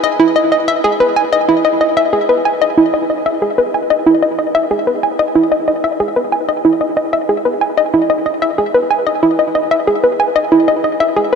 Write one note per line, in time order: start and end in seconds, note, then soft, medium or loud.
0.04 0.18 D#5 loud
0.20 0.34 E4 medium
0.36 0.51 D#5 medium
0.52 0.67 D#5 medium
0.68 0.78 E5 loud
0.84 0.94 G#4 medium
1.00 1.15 B4 medium
1.16 1.22 G#5 medium
1.33 1.47 D#5 loud
1.49 1.63 E4 medium
1.65 1.79 D#5 medium
1.81 1.96 D#5 medium
1.97 2.07 E5 loud
2.13 2.23 G#4 medium
2.29 2.44 B4 medium
2.45 2.51 G#5 medium
2.62 2.76 D#5 loud
2.78 2.92 E4 medium
2.94 3.08 D#5 medium
3.10 3.25 D#5 medium
3.26 3.36 E5 loud
3.42 3.52 G#4 medium
3.58 3.73 B4 medium
3.74 3.80 G#5 medium
3.90 4.05 D#5 loud
4.06 4.21 E4 medium
4.23 4.37 D#5 medium
4.39 4.54 D#5 medium
4.55 4.65 E5 loud
4.71 4.81 G#4 medium
4.87 5.02 B4 medium
5.03 5.09 G#5 medium
5.19 5.34 D#5 loud
5.35 5.50 E4 medium
5.52 5.66 D#5 medium
5.68 5.83 D#5 medium
5.84 5.94 E5 loud
6.00 6.10 G#4 medium
6.16 6.31 B4 medium
6.32 6.38 G#5 medium
6.49 6.63 D#5 loud
6.65 6.79 E4 medium
6.81 6.96 D#5 medium
6.97 7.12 D#5 medium
7.13 7.23 E5 loud
7.29 7.39 G#4 medium
7.45 7.60 B4 medium
7.61 7.67 G#5 medium
7.78 7.92 D#5 loud
7.94 8.08 E4 medium
8.10 8.25 D#5 medium
8.26 8.41 D#5 medium
8.42 8.52 E5 loud
8.58 8.68 G#4 medium
8.74 8.89 B4 medium
8.91 8.96 G#5 medium
9.07 9.21 D#5 loud
9.23 9.38 E4 medium
9.39 9.54 D#5 medium
9.55 9.70 D#5 medium
9.71 9.81 E5 loud
9.87 9.97 G#4 medium
10.04 10.18 B4 medium
10.20 10.26 G#5 medium
10.36 10.50 D#5 loud
10.52 10.67 E4 medium
10.68 10.83 D#5 medium
10.84 10.99 D#5 medium
11.00 11.10 E5 loud
11.16 11.26 G#4 medium